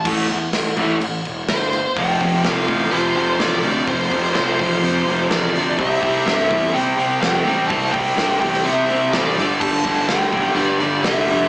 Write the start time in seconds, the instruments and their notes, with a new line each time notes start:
0.05 picked electric bass A1, overdriven electric guitar A2 E3 A3, kick, crash
0.29 picked electric bass E2, crash
0.53 picked electric bass A1, snare, crash
0.76 picked electric bass A1, overdriven electric guitar A2 E3 A3, crash
1.01 picked electric bass A1, crash
1.25 picked electric bass E1, crash
1.48 picked electric bass G1, lead electric guitar C5, snare, crash
1.73 crash
1.96 picked electric bass F1, overdriven electric guitar F2 C3 F3, lead electric guitar G5, kick, open hi-hat
2.20 picked electric bass F1, overdriven electric guitar F2 C3 F3, kick, open hi-hat
2.44 picked electric bass C2, overdriven electric guitar F2 C3 F3, lead electric guitar F5, snare, open hi-hat
2.67 picked electric bass A1, overdriven electric guitar F2 C3 F3, kick, open hi-hat
2.91 overdriven electric guitar F2 C3 F3, picked electric bass F2, lead electric guitar C5, open hi-hat
3.15 picked electric bass F1, overdriven electric guitar F2 C3 F3, open hi-hat
3.39 picked electric bass A1, overdriven electric guitar F2 C3 F3, lead electric guitar D5, snare, open hi-hat
3.63 picked electric bass D2, overdriven electric guitar F2 C3 F3, open hi-hat
3.87 picked electric bass F1, overdriven electric guitar F2 C3 F3, lead electric guitar C5, kick, open hi-hat
4.11 picked electric bass F1, overdriven electric guitar F2 C3 F3, kick, open hi-hat
4.24 snare
4.34 picked electric bass C2, overdriven electric guitar F2 C3 F3, lead electric guitar C5, snare, open hi-hat
4.58 picked electric bass A1, overdriven electric guitar F2 C3 F3, kick, open hi-hat
4.83 overdriven electric guitar F2 C3 F3, picked electric bass F2, open hi-hat
5.07 picked electric bass F1, overdriven electric guitar F2 C3 F3, open hi-hat
5.29 picked electric bass A1, overdriven electric guitar F2 C3 F3, lead electric guitar D5, snare, open hi-hat
5.54 picked electric bass D2, overdriven electric guitar F2 C3 F3, open hi-hat
5.77 picked electric bass C2, overdriven electric guitar C3 G3 C4, lead electric guitar E5, kick, open hi-hat
6.02 picked electric bass C2, overdriven electric guitar C3 G3 C4, kick
6.25 picked electric bass G2, overdriven electric guitar C3 G3 C4, lead electric guitar E5, snare, open hi-hat
6.48 picked electric bass E2, overdriven electric guitar C3 G3 C4, kick, open hi-hat
6.73 overdriven electric guitar C3 G3 C4, picked electric bass C3, lead electric guitar G5, open hi-hat
6.97 picked electric bass C2, overdriven electric guitar C3 G3 C4, open hi-hat
7.21 picked electric bass F2, overdriven electric guitar C3 G3 C4, lead electric guitar G5, snare, open hi-hat
7.44 picked electric bass A1, overdriven electric guitar C3 G3 C4, open hi-hat
7.68 picked electric bass C2, overdriven electric guitar C3 G3 C4, lead electric guitar A5, kick, open hi-hat
7.92 picked electric bass C2, overdriven electric guitar C3 G3 C4, lead electric guitar G5, kick, open hi-hat
8.06 snare
8.17 picked electric bass G2, overdriven electric guitar C3 G3 C4, snare, open hi-hat
8.41 picked electric bass E2, overdriven electric guitar C3 G3 C4, lead electric guitar G5, kick, open hi-hat
8.54 snare
8.65 picked electric bass C3, overdriven electric guitar C3 G3 C4, lead electric guitar E5, open hi-hat
8.89 picked electric bass C2, overdriven electric guitar C3 G3 C4, open hi-hat
9.13 picked electric bass A1, overdriven electric guitar C3 G3 C4, lead electric guitar D5, snare, open hi-hat
9.37 picked electric bass G1, overdriven electric guitar G2 D3 G3, open hi-hat
9.60 picked electric bass G1, overdriven electric guitar G2 D3 G3, lead electric guitar A5, kick, crash
9.84 picked electric bass G1, overdriven electric guitar G2 D3 G3, kick, open hi-hat
10.08 picked electric bass D2, overdriven electric guitar G2 D3 G3, lead electric guitar G5, snare, open hi-hat
10.32 picked electric bass B1, overdriven electric guitar G2 D3 G3, kick, open hi-hat
10.54 picked electric bass G2, overdriven electric guitar G2 D3 G3, lead electric guitar D5, open hi-hat
10.79 picked electric bass G1, overdriven electric guitar G2 D3 G3, open hi-hat
11.03 picked electric bass C2, overdriven electric guitar G2 D3 G3, lead electric guitar E5, snare, open hi-hat
11.27 picked electric bass F1, overdriven electric guitar G2 D3 G3, open hi-hat